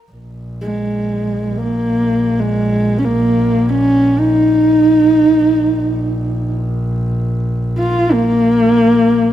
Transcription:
0.12 A#1
0.61 G#3
1.58 A#3
2.40 G#3
2.99 C#4
3.05 A#3
3.70 C#4
4.19 D#4
5.35 A#1
7.79 F4
8.12 A#3

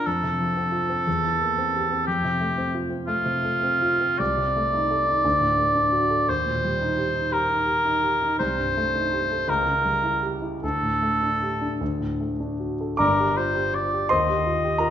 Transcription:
0.06 F2 A4
0.23 C3
0.40 F3
0.57 C4
0.72 F4
0.90 C4
1.07 E2
1.24 E3
1.41 A#3
1.58 C4
1.76 G4
1.92 C4
2.07 F2 G4
2.25 C3
2.40 A3
2.58 C4
2.74 F4
2.90 C4
3.07 A3 F4
3.25 C3
3.44 A3
3.63 C4
3.82 F4
4.01 C4
4.19 C2 D5
4.37 C3
4.56 A3
4.74 D#4
4.91 A4
5.07 D#4
5.25 D2
5.40 A2
5.57 A3
5.75 D4
5.92 F#4
6.10 A4
6.29 D#2 C5
6.46 A#2
6.64 G3
6.82 D#4
6.98 G4
7.14 D#4
7.31 G4 A#4
7.49 D#4
7.66 G4
7.85 D#4
8.03 G4
8.22 D#4
8.39 C2 C5
8.58 G2
8.77 A3
8.95 D#4
9.13 G4
9.32 A4
9.48 C#2 A#4
9.66 C#3
9.85 G3
10.04 E4
10.23 G4
10.42 E4
10.64 D2 A4
10.83 A2
11.02 A3
11.23 D4
11.43 G4
11.61 D4
11.81 D2
12.00 A2
12.20 A3
12.40 D4
12.60 F#4
12.81 A4
12.97 G1 G2 A#4 D5 A#5 D6
13.20 G4
13.37 F4 C5
13.55 G4
13.75 D5
13.94 G4
14.09 D#2 C5 D#5 C6
14.30 G4
14.46 F4
14.65 G4
14.78 F4 A#4 A#5

